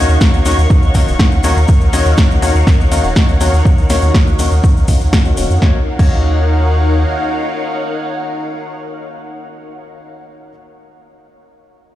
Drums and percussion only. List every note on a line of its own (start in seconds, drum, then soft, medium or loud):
0.09 shaker soft
0.21 kick loud
0.21 snare loud
0.21 shaker medium
0.34 shaker soft
0.45 open hi-hat medium
0.45 shaker medium
0.59 shaker soft
0.70 kick loud
0.70 shaker soft
0.82 shaker soft
0.94 kick medium
0.94 open hi-hat loud
0.94 shaker medium
1.08 shaker soft
1.19 kick loud
1.19 snare loud
1.19 shaker soft
1.32 shaker soft
1.44 open hi-hat medium
1.44 shaker medium
1.57 shaker soft
1.68 kick loud
1.68 shaker medium
1.81 shaker soft
1.93 open hi-hat loud
1.93 shaker medium
2.05 shaker soft
2.17 kick loud
2.17 snare loud
2.17 shaker medium
2.31 shaker soft
2.42 open hi-hat medium
2.42 shaker medium
2.55 shaker soft
2.67 kick loud
2.67 snare medium
2.67 shaker soft
2.80 shaker soft
2.92 open hi-hat loud
2.92 shaker medium
3.04 shaker soft
3.16 kick loud
3.16 snare loud
3.16 shaker soft
3.29 shaker soft
3.41 open hi-hat medium
3.41 shaker medium
3.54 shaker soft
3.65 kick loud
3.65 shaker soft
3.78 shaker soft
3.90 snare medium
3.90 open hi-hat loud
3.90 shaker medium
4.02 shaker soft
4.14 kick loud
4.14 snare loud
4.14 shaker soft
4.27 shaker soft
4.39 open hi-hat medium
4.39 shaker medium
4.51 shaker soft
4.64 kick loud
4.64 shaker soft
4.77 shaker soft
4.88 kick medium
4.88 open hi-hat loud
4.88 shaker medium
5.01 shaker soft
5.13 kick loud
5.13 snare loud
5.13 shaker soft
5.25 shaker soft
5.37 open hi-hat medium
5.37 shaker medium
5.51 shaker soft
5.62 kick loud
5.62 snare medium
5.99 kick loud
5.99 crash medium